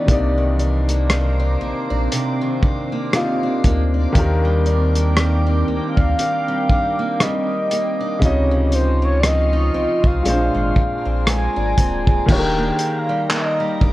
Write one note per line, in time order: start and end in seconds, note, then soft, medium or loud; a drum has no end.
0.00 0.10 B3 medium
0.00 0.20 B3 medium
0.00 0.10 D#4 medium
0.00 1.11 D5 medium
0.06 1.57 C2 loud
0.06 3.08 C3 medium
0.06 2.10 C3 medium
0.06 3.09 A#3 medium
0.06 8.18 C4 medium
0.06 0.59 D4 medium
0.06 4.11 C5 medium
0.06 2.10 A#5 medium
0.06 8.18 D6 medium
0.06 kick loud
0.06 closed hi-hat medium
0.10 3.10 D#4 medium
0.10 3.11 D5 medium
0.38 1.10 D#3 medium
0.59 1.39 D4 medium
0.59 closed hi-hat soft
0.89 1.60 A#3 medium
0.89 closed hi-hat medium
1.10 2.41 D#3 medium
1.10 cross-stick loud
1.10 closed hi-hat medium
1.40 1.90 D4 medium
1.61 1.73 A#1 soft
1.61 2.92 A#3 medium
1.90 2.09 A#1 medium
1.90 2.12 D4 medium
2.12 4.15 C3 medium
2.12 2.62 D4 medium
2.12 4.13 C6 medium
2.12 closed hi-hat medium
2.41 3.46 D#3 medium
2.63 3.43 D4 medium
2.63 kick medium
2.92 3.64 A#3 medium
3.13 4.15 C3 medium
3.13 4.13 A#3 soft
3.13 4.16 D#4 medium
3.13 4.16 F4 medium
3.13 cross-stick loud
3.13 closed hi-hat medium
3.43 3.94 D4 medium
3.64 4.07 D2 loud
3.64 4.95 A#3 medium
3.64 kick medium
3.64 closed hi-hat medium
3.94 4.16 D4 medium
4.12 5.64 D#2 medium
4.12 8.17 D#3 medium
4.12 6.18 D#3 medium
4.12 8.18 A#3 medium
4.12 4.65 D4 medium
4.12 8.18 A#4 medium
4.12 8.18 G5 medium
4.12 kick loud
4.12 closed hi-hat medium
4.17 8.19 G4 medium
4.17 8.20 A#4 medium
4.45 5.16 G3 medium
4.66 5.45 D4 medium
4.66 closed hi-hat soft
4.95 5.67 A#3 medium
4.95 closed hi-hat medium
5.17 6.47 G3 medium
5.17 cross-stick loud
5.17 closed hi-hat medium
5.46 5.96 D4 medium
5.68 5.80 D2 soft
5.68 6.98 A#3 medium
5.86 7.24 F5 loud
5.97 6.15 D2 medium
5.97 6.18 D4 medium
5.97 kick medium
6.19 8.22 D#3 medium
6.19 6.68 D4 medium
6.19 closed hi-hat medium
6.48 7.19 G3 medium
6.69 7.50 D4 medium
6.69 kick medium
6.99 7.70 A#3 medium
7.20 8.34 G3 medium
7.20 8.26 D#5 loud
7.20 cross-stick loud
7.20 closed hi-hat medium
7.71 8.34 A#3 medium
7.71 closed hi-hat medium
8.01 8.22 D4 medium
8.19 9.71 C#2 loud
8.19 10.21 C3 medium
8.19 10.20 C#3 medium
8.19 10.37 C#3 medium
8.19 8.72 D#4 medium
8.19 10.23 F4 medium
8.19 10.23 D#5 medium
8.19 12.25 C6 medium
8.19 10.23 C#6 medium
8.19 kick loud
8.19 closed hi-hat medium
8.23 10.22 F4 medium
8.23 8.69 C#5 loud
8.23 10.23 D#5 medium
8.51 9.23 F3 medium
8.69 9.52 D#4 medium
8.69 8.76 C#5 medium
8.69 closed hi-hat medium
8.75 9.03 C5 medium
9.02 9.74 C4 medium
9.02 9.22 C#5 medium
9.20 10.37 F3 medium
9.20 9.27 D5 medium
9.20 cross-stick loud
9.20 closed hi-hat medium
9.26 10.08 D#5 medium
9.53 10.03 D#4 medium
9.74 9.87 C2 soft
9.74 10.37 C4 medium
10.04 10.22 C2 medium
10.04 10.25 D#4 medium
10.04 11.28 F5 loud
10.04 kick medium
10.23 10.50 A#1 loud
10.23 12.23 A#2 medium
10.23 12.40 A#2 medium
10.23 12.25 G#3 medium
10.23 10.75 D4 medium
10.23 12.27 G#4 medium
10.23 12.27 D5 medium
10.23 12.27 A#5 medium
10.23 closed hi-hat medium
10.27 10.34 C4 soft
10.27 12.27 C5 medium
10.34 12.29 D4 medium
10.55 10.73 G#1 medium
10.55 11.26 G#3 medium
10.76 11.56 D4 medium
10.76 kick medium
11.05 11.48 A#1 medium
11.05 11.76 C4 medium
11.27 12.40 G#3 medium
11.27 12.32 G#5 loud
11.27 cross-stick loud
11.27 closed hi-hat medium
11.56 11.75 G#1 medium
11.56 12.07 D4 medium
11.78 12.20 D1 medium
11.78 12.40 C4 medium
11.78 kick medium
11.78 closed hi-hat medium
12.07 12.29 D4 medium
12.07 kick medium
12.26 12.71 D#1 loud
12.26 13.93 D#3 medium
12.26 13.93 A#3 medium
12.26 12.80 D4 medium
12.26 13.93 A#4 medium
12.26 13.93 G5 medium
12.26 13.93 A#5 medium
12.26 kick loud
12.26 crash loud
12.30 13.93 G4 medium
12.30 12.38 C#5 medium
12.30 13.00 G5 loud
12.39 13.93 A#4 medium
12.58 13.29 A#3 medium
12.79 closed hi-hat medium
12.98 13.31 F5 medium
13.09 13.59 G3 medium
13.30 13.93 A#3 medium
13.30 13.90 D#5 medium
13.30 clap loud
13.30 closed hi-hat medium
13.60 13.93 G3 medium
13.81 13.93 D1 medium
13.81 13.93 D4 medium
13.81 kick medium